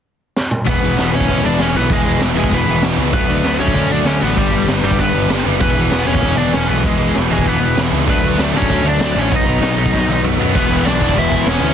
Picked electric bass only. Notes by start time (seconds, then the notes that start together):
0.67 E1
0.83 E1
0.98 E1
1.14 E1
1.29 E1
1.44 E1
1.60 E1
1.75 B1
1.89 E1
2.05 E1
2.20 E1
2.35 E1
2.51 E1
2.67 E1
2.84 E1
2.98 C#2
3.13 D2
3.29 D2
3.43 D2
3.60 D2
3.74 D2
3.90 D2
4.07 D2
4.22 A1
4.37 G1
4.53 G1
4.68 G1
4.83 G1
4.99 G1
5.14 G1
5.29 G1
5.46 F#1
5.61 E1
5.77 E1
5.91 E1
6.07 E1
6.22 E1
6.37 E1
6.55 E1
6.69 B1
6.84 E1
6.99 E1
7.16 E1
7.31 E1
7.45 E1
7.60 E1
7.76 E1
7.91 C#2
8.08 D2
8.23 D2
8.38 D2
8.53 D2
8.70 D2
8.83 D2
9.00 D2
9.16 A1
9.31 B1
9.46 B1
9.61 B1
9.76 B1
9.93 B1
10.08 B1
10.22 B1
10.37 F#2
10.55 E1
10.69 E1
10.86 B1
11.02 E1
11.16 E1
11.46 E1
11.60 D2